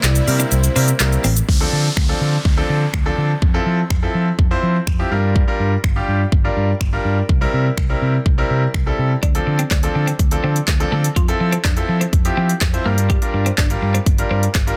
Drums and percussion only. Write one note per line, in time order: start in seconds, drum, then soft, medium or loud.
0.04 snare medium
0.04 clap loud
0.04 closed hi-hat medium
0.04 shaker medium
0.15 closed hi-hat medium
0.15 shaker medium
0.28 open hi-hat medium
0.28 shaker soft
0.40 closed hi-hat medium
0.40 shaker medium
0.52 closed hi-hat medium
0.52 shaker medium
0.64 closed hi-hat medium
0.64 shaker medium
0.76 open hi-hat medium
0.76 shaker medium
0.88 closed hi-hat medium
0.88 shaker medium
1.00 snare medium
1.00 clap loud
1.00 closed hi-hat medium
1.00 shaker medium
1.13 closed hi-hat soft
1.13 shaker soft
1.24 open hi-hat medium
1.24 shaker medium
1.37 closed hi-hat medium
1.37 shaker medium
1.49 kick loud
1.97 finger snap loud
1.97 kick loud
2.45 kick loud
2.94 finger snap loud
2.94 kick loud
3.42 kick loud
3.90 finger snap loud
3.90 kick loud
4.39 kick loud
4.87 finger snap loud
4.87 kick loud
5.36 kick loud
5.84 finger snap loud
5.84 kick loud
6.32 kick loud
6.81 finger snap loud
6.81 kick loud
7.29 kick loud
7.77 finger snap loud
7.77 kick loud
8.26 kick loud
8.74 finger snap loud
8.74 kick loud
9.23 kick loud
9.23 closed hi-hat medium
9.35 closed hi-hat soft
9.59 closed hi-hat soft
9.71 kick loud
9.71 snare medium
9.71 clap loud
9.71 closed hi-hat medium
9.83 closed hi-hat medium
10.08 closed hi-hat medium
10.19 kick loud
10.19 closed hi-hat medium
10.31 closed hi-hat medium
10.56 closed hi-hat medium
10.68 kick loud
10.68 snare medium
10.68 clap loud
10.68 closed hi-hat medium
10.80 closed hi-hat soft
11.04 closed hi-hat medium
11.16 kick loud
11.16 closed hi-hat medium
11.28 closed hi-hat medium
11.52 closed hi-hat medium
11.65 kick loud
11.65 snare medium
11.65 clap loud
11.65 closed hi-hat medium
11.77 closed hi-hat medium
12.01 closed hi-hat medium
12.13 kick loud
12.13 closed hi-hat medium
12.25 closed hi-hat medium
12.49 closed hi-hat medium
12.61 kick loud
12.61 snare medium
12.61 clap loud
12.61 closed hi-hat medium
12.74 closed hi-hat soft
12.98 closed hi-hat medium
13.10 kick loud
13.10 closed hi-hat medium
13.22 closed hi-hat medium
13.46 closed hi-hat medium
13.58 kick loud
13.58 snare medium
13.58 clap loud
13.58 closed hi-hat medium
13.70 closed hi-hat medium
13.95 closed hi-hat medium
14.06 kick loud
14.06 closed hi-hat medium
14.18 closed hi-hat medium
14.43 closed hi-hat medium
14.55 kick loud
14.55 snare medium
14.55 clap loud
14.55 closed hi-hat medium
14.67 closed hi-hat soft